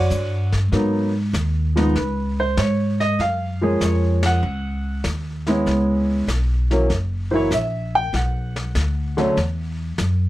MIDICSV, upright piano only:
0, 0, Header, 1, 2, 480
1, 0, Start_track
1, 0, Tempo, 617920
1, 565, Time_signature, 4, 2, 24, 8
1, 7996, End_track
2, 0, Start_track
2, 0, Title_t, "Upright piano"
2, 0, Program_c, 0, 0
2, 0, Note_on_c, 0, 66, 69
2, 0, Note_on_c, 0, 73, 74
2, 0, Note_on_c, 0, 74, 68
2, 0, Note_on_c, 0, 78, 83
2, 383, Note_off_c, 0, 78, 0
2, 386, Note_off_c, 0, 74, 0
2, 387, Note_off_c, 0, 66, 0
2, 388, Note_off_c, 0, 73, 0
2, 557, Note_on_c, 0, 54, 57
2, 562, Note_on_c, 0, 58, 51
2, 567, Note_on_c, 0, 59, 55
2, 572, Note_on_c, 0, 63, 64
2, 857, Note_off_c, 0, 54, 0
2, 860, Note_off_c, 0, 58, 0
2, 862, Note_off_c, 0, 59, 0
2, 865, Note_off_c, 0, 63, 0
2, 1363, Note_on_c, 0, 53, 68
2, 1369, Note_on_c, 0, 56, 60
2, 1372, Note_on_c, 0, 59, 69
2, 1376, Note_on_c, 0, 63, 85
2, 1504, Note_off_c, 0, 53, 0
2, 1507, Note_off_c, 0, 56, 0
2, 1508, Note_off_c, 0, 59, 0
2, 1510, Note_off_c, 0, 63, 0
2, 1527, Note_on_c, 0, 71, 65
2, 1845, Note_off_c, 0, 71, 0
2, 1863, Note_on_c, 0, 72, 85
2, 2004, Note_off_c, 0, 72, 0
2, 2009, Note_on_c, 0, 73, 87
2, 2326, Note_off_c, 0, 73, 0
2, 2333, Note_on_c, 0, 75, 94
2, 2479, Note_off_c, 0, 75, 0
2, 2493, Note_on_c, 0, 77, 86
2, 2808, Note_off_c, 0, 77, 0
2, 2808, Note_on_c, 0, 53, 66
2, 2814, Note_on_c, 0, 56, 54
2, 2815, Note_on_c, 0, 58, 55
2, 2821, Note_on_c, 0, 68, 63
2, 2823, Note_on_c, 0, 61, 69
2, 2963, Note_off_c, 0, 68, 0
2, 2982, Note_on_c, 0, 73, 74
2, 3293, Note_off_c, 0, 73, 0
2, 3308, Note_on_c, 0, 78, 91
2, 3411, Note_off_c, 0, 53, 0
2, 3414, Note_off_c, 0, 56, 0
2, 3414, Note_off_c, 0, 58, 0
2, 3418, Note_off_c, 0, 61, 0
2, 3899, Note_off_c, 0, 78, 0
2, 4250, Note_on_c, 0, 64, 71
2, 4256, Note_on_c, 0, 56, 65
2, 4262, Note_on_c, 0, 59, 59
2, 4267, Note_on_c, 0, 61, 76
2, 4852, Note_off_c, 0, 64, 0
2, 4855, Note_off_c, 0, 56, 0
2, 4857, Note_off_c, 0, 59, 0
2, 4860, Note_off_c, 0, 61, 0
2, 5209, Note_on_c, 0, 52, 65
2, 5213, Note_on_c, 0, 54, 64
2, 5218, Note_on_c, 0, 58, 64
2, 5221, Note_on_c, 0, 61, 76
2, 5346, Note_off_c, 0, 52, 0
2, 5348, Note_off_c, 0, 54, 0
2, 5350, Note_off_c, 0, 58, 0
2, 5352, Note_off_c, 0, 61, 0
2, 5679, Note_on_c, 0, 52, 67
2, 5680, Note_on_c, 0, 72, 60
2, 5686, Note_on_c, 0, 54, 67
2, 5690, Note_on_c, 0, 58, 62
2, 5697, Note_off_c, 0, 72, 0
2, 5698, Note_on_c, 0, 64, 80
2, 5714, Note_on_c, 0, 73, 84
2, 5821, Note_off_c, 0, 52, 0
2, 5825, Note_off_c, 0, 54, 0
2, 5827, Note_off_c, 0, 58, 0
2, 5831, Note_off_c, 0, 64, 0
2, 5849, Note_off_c, 0, 73, 0
2, 5855, Note_on_c, 0, 76, 82
2, 6169, Note_off_c, 0, 76, 0
2, 6177, Note_on_c, 0, 79, 110
2, 6321, Note_off_c, 0, 79, 0
2, 6331, Note_on_c, 0, 78, 68
2, 7123, Note_on_c, 0, 50, 74
2, 7129, Note_on_c, 0, 54, 74
2, 7134, Note_on_c, 0, 57, 70
2, 7143, Note_on_c, 0, 61, 86
2, 7263, Note_off_c, 0, 50, 0
2, 7266, Note_off_c, 0, 54, 0
2, 7268, Note_off_c, 0, 57, 0
2, 7273, Note_off_c, 0, 61, 0
2, 7735, Note_off_c, 0, 78, 0
2, 7996, End_track
0, 0, End_of_file